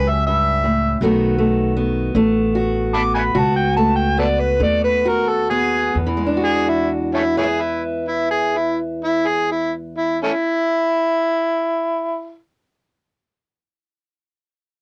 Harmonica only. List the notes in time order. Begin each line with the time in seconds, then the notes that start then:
Already playing: B4
0.09 E5
0.27 E5
2.94 A5 B5 D6
3.15 F#5 G#5 B5
3.39 A5
3.56 G5
3.77 A5
3.96 G5
4.19 A4 B4 D5
4.40 B4
4.63 D5
4.84 B4
5.08 A#4
5.28 A4
5.50 G#4
6.45 G#4
6.68 E4
7.14 A3 C#4 E4
7.38 C#4 E4 G#4
7.61 E4
8.08 E4
8.31 G#4
8.57 E4
9.04 E4
9.28 G#4
9.51 E4
9.97 E4
10.24 A3 C#4 E4